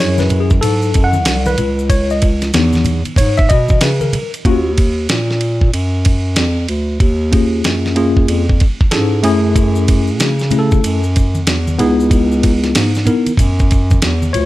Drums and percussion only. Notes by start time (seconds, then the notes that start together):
0.18 snare, high conga, maracas
0.30 ride, low conga, maracas
0.50 kick, high conga, maracas
0.63 ride, low conga, maracas
0.82 maracas
0.94 kick, ride, maracas
1.13 high conga, maracas
1.25 snare, hi-hat pedal, ride, maracas
1.46 high conga, maracas
1.58 ride, low conga, maracas
1.79 maracas
1.90 kick, ride, maracas
2.10 maracas
2.22 kick, ride, maracas
2.41 snare, ride, maracas
2.53 snare, hi-hat pedal, ride, maracas
2.73 snare, high conga, maracas
2.85 ride, low conga, maracas
3.05 ride, high conga, maracas
3.16 kick, ride, low conga, maracas
3.37 kick, maracas
3.50 kick, ride, maracas
3.68 kick, high conga, maracas
3.81 snare, hi-hat pedal, ride, maracas
4.01 high conga, maracas
4.13 ride, low conga, maracas
4.34 ride, maracas
4.45 kick, ride
4.78 kick, ride
5.09 snare, hi-hat pedal, ride
5.31 snare
5.41 ride
5.61 kick
5.74 ride
6.05 kick, ride
6.36 snare, hi-hat pedal, ride
6.69 ride
7.00 kick, ride
7.33 kick, ride
7.64 snare, hi-hat pedal, ride
7.86 snare
7.96 ride
8.17 kick
8.28 ride
8.50 kick
8.60 kick, ride
8.81 kick
8.91 snare, hi-hat pedal, ride
9.24 ride
9.56 kick, ride, maracas
9.76 maracas
9.88 kick, ride, maracas
10.07 maracas
10.20 snare, hi-hat pedal, ride, maracas
10.39 snare, maracas
10.51 ride, low conga, maracas
10.71 kick, high conga, maracas
10.84 ride, maracas
11.04 maracas
11.16 kick, ride, maracas
11.35 high conga, maracas
11.47 snare, hi-hat pedal, ride, maracas
11.67 high conga, maracas
11.79 ride, low conga, maracas
12.00 maracas
12.11 kick, ride, maracas
12.32 maracas
12.43 kick, ride, maracas
12.63 snare, ride, maracas
12.75 snare, hi-hat pedal, ride, maracas
12.95 snare, maracas
13.06 ride, low conga, maracas
13.27 ride, high conga, maracas
13.37 kick, ride, low conga, maracas
13.59 kick, maracas
13.71 kick, ride, maracas
13.90 kick, high conga, maracas
14.02 snare, hi-hat pedal, ride, maracas
14.22 high conga, maracas
14.34 ride, low conga, maracas